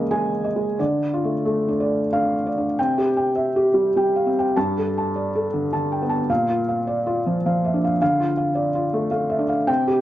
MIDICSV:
0, 0, Header, 1, 2, 480
1, 0, Start_track
1, 0, Tempo, 663717
1, 564, Time_signature, 3, 2, 24, 8
1, 2004, Tempo, 589971
1, 4404, Tempo, 566572
1, 8038, End_track
2, 0, Start_track
2, 0, Title_t, "Felt piano"
2, 0, Program_c, 0, 0
2, 0, Control_c, 0, 64, 127
2, 0, Note_on_c, 0, 49, 63
2, 0, Note_on_c, 0, 56, 46
2, 0, Note_on_c, 0, 58, 38
2, 0, Note_on_c, 0, 61, 43
2, 0, Note_on_c, 0, 68, 48
2, 0, Note_on_c, 0, 75, 49
2, 79, Note_off_c, 0, 58, 0
2, 79, Note_on_c, 0, 80, 70
2, 80, Note_off_c, 0, 56, 0
2, 80, Note_on_c, 0, 56, 46
2, 220, Note_off_c, 0, 75, 0
2, 320, Note_on_c, 0, 75, 43
2, 333, Note_off_c, 0, 56, 0
2, 405, Note_on_c, 0, 56, 40
2, 464, Note_off_c, 0, 80, 0
2, 535, Note_off_c, 0, 49, 0
2, 566, Note_off_c, 0, 75, 0
2, 567, Note_off_c, 0, 56, 0
2, 572, Note_on_c, 0, 74, 50
2, 577, Note_on_c, 0, 50, 54
2, 581, Control_c, 0, 64, 0
2, 583, Note_off_c, 0, 68, 0
2, 588, Note_off_c, 0, 61, 0
2, 726, Control_c, 0, 64, 127
2, 823, Note_on_c, 0, 65, 44
2, 900, Note_on_c, 0, 57, 40
2, 962, Note_off_c, 0, 74, 0
2, 1041, Note_off_c, 0, 57, 0
2, 1052, Note_on_c, 0, 57, 44
2, 1206, Note_off_c, 0, 65, 0
2, 1218, Note_on_c, 0, 62, 40
2, 1303, Note_on_c, 0, 74, 42
2, 1442, Note_off_c, 0, 57, 0
2, 1476, Note_off_c, 0, 62, 0
2, 1538, Note_on_c, 0, 62, 41
2, 1538, Note_on_c, 0, 77, 63
2, 1684, Note_off_c, 0, 74, 0
2, 1781, Note_on_c, 0, 74, 43
2, 1792, Note_off_c, 0, 62, 0
2, 1863, Note_on_c, 0, 62, 37
2, 1914, Note_off_c, 0, 77, 0
2, 1981, Note_off_c, 0, 50, 0
2, 2006, Note_off_c, 0, 74, 0
2, 2009, Note_off_c, 0, 62, 0
2, 2016, Note_on_c, 0, 48, 53
2, 2018, Note_on_c, 0, 79, 66
2, 2020, Control_c, 0, 64, 0
2, 2160, Control_c, 0, 64, 127
2, 2172, Note_on_c, 0, 67, 43
2, 2271, Note_off_c, 0, 79, 0
2, 2327, Note_on_c, 0, 79, 44
2, 2428, Note_off_c, 0, 67, 0
2, 2482, Note_on_c, 0, 76, 44
2, 2584, Note_off_c, 0, 79, 0
2, 2648, Note_on_c, 0, 67, 45
2, 2740, Note_off_c, 0, 76, 0
2, 2792, Note_on_c, 0, 55, 41
2, 2903, Note_off_c, 0, 67, 0
2, 2961, Note_off_c, 0, 55, 0
2, 2973, Note_on_c, 0, 55, 42
2, 2980, Note_on_c, 0, 79, 46
2, 3135, Note_on_c, 0, 77, 38
2, 3218, Note_on_c, 0, 60, 42
2, 3232, Note_off_c, 0, 79, 0
2, 3294, Note_off_c, 0, 77, 0
2, 3321, Note_on_c, 0, 79, 43
2, 3359, Note_off_c, 0, 55, 0
2, 3428, Note_off_c, 0, 48, 0
2, 3459, Note_off_c, 0, 60, 0
2, 3464, Note_on_c, 0, 81, 64
2, 3468, Note_on_c, 0, 43, 54
2, 3469, Note_off_c, 0, 79, 0
2, 3471, Control_c, 0, 64, 0
2, 3614, Control_c, 0, 64, 127
2, 3637, Note_on_c, 0, 69, 42
2, 3717, Note_off_c, 0, 81, 0
2, 3798, Note_on_c, 0, 81, 43
2, 3880, Note_off_c, 0, 69, 0
2, 3944, Note_on_c, 0, 74, 43
2, 4038, Note_off_c, 0, 81, 0
2, 4105, Note_on_c, 0, 69, 45
2, 4189, Note_off_c, 0, 74, 0
2, 4254, Note_on_c, 0, 50, 43
2, 4349, Note_off_c, 0, 69, 0
2, 4399, Note_off_c, 0, 50, 0
2, 4409, Note_on_c, 0, 81, 45
2, 4411, Note_on_c, 0, 50, 41
2, 4572, Note_on_c, 0, 79, 38
2, 4657, Note_on_c, 0, 59, 40
2, 4664, Note_off_c, 0, 81, 0
2, 4719, Note_on_c, 0, 81, 46
2, 4729, Note_off_c, 0, 79, 0
2, 4793, Note_off_c, 0, 50, 0
2, 4858, Note_off_c, 0, 43, 0
2, 4882, Note_off_c, 0, 81, 0
2, 4890, Note_on_c, 0, 46, 52
2, 4891, Note_off_c, 0, 59, 0
2, 4892, Note_on_c, 0, 77, 62
2, 4899, Control_c, 0, 64, 0
2, 5024, Control_c, 0, 64, 127
2, 5061, Note_on_c, 0, 65, 40
2, 5144, Note_off_c, 0, 77, 0
2, 5221, Note_on_c, 0, 77, 44
2, 5309, Note_off_c, 0, 65, 0
2, 5379, Note_on_c, 0, 74, 42
2, 5471, Note_off_c, 0, 77, 0
2, 5542, Note_on_c, 0, 65, 46
2, 5633, Note_off_c, 0, 74, 0
2, 5712, Note_on_c, 0, 53, 41
2, 5796, Note_off_c, 0, 65, 0
2, 5867, Note_off_c, 0, 53, 0
2, 5878, Note_on_c, 0, 77, 48
2, 5879, Note_on_c, 0, 53, 44
2, 6034, Note_on_c, 0, 76, 37
2, 6112, Note_on_c, 0, 62, 39
2, 6125, Note_off_c, 0, 77, 0
2, 6187, Note_off_c, 0, 76, 0
2, 6202, Note_on_c, 0, 77, 45
2, 6254, Note_off_c, 0, 53, 0
2, 6306, Note_off_c, 0, 46, 0
2, 6335, Note_off_c, 0, 77, 0
2, 6344, Note_off_c, 0, 62, 0
2, 6348, Note_on_c, 0, 77, 67
2, 6351, Control_c, 0, 64, 0
2, 6353, Note_on_c, 0, 50, 55
2, 6500, Control_c, 0, 64, 127
2, 6504, Note_on_c, 0, 65, 45
2, 6593, Note_off_c, 0, 77, 0
2, 6652, Note_on_c, 0, 77, 47
2, 6748, Note_off_c, 0, 65, 0
2, 6801, Note_on_c, 0, 74, 46
2, 6900, Note_off_c, 0, 77, 0
2, 6968, Note_on_c, 0, 65, 46
2, 7053, Note_off_c, 0, 74, 0
2, 7124, Note_on_c, 0, 57, 43
2, 7217, Note_off_c, 0, 65, 0
2, 7264, Note_off_c, 0, 57, 0
2, 7275, Note_on_c, 0, 77, 50
2, 7277, Note_on_c, 0, 57, 44
2, 7433, Note_on_c, 0, 76, 39
2, 7510, Note_on_c, 0, 62, 44
2, 7533, Note_off_c, 0, 77, 0
2, 7596, Note_on_c, 0, 77, 45
2, 7597, Note_off_c, 0, 76, 0
2, 7664, Note_off_c, 0, 57, 0
2, 7736, Note_off_c, 0, 50, 0
2, 7754, Note_on_c, 0, 48, 60
2, 7754, Note_on_c, 0, 79, 72
2, 7757, Note_off_c, 0, 62, 0
2, 7760, Note_off_c, 0, 77, 0
2, 7776, Control_c, 0, 64, 0
2, 7911, Control_c, 0, 64, 127
2, 7923, Note_on_c, 0, 67, 48
2, 8015, Note_off_c, 0, 79, 0
2, 8038, Note_off_c, 0, 48, 0
2, 8038, Note_off_c, 0, 67, 0
2, 8038, End_track
0, 0, End_of_file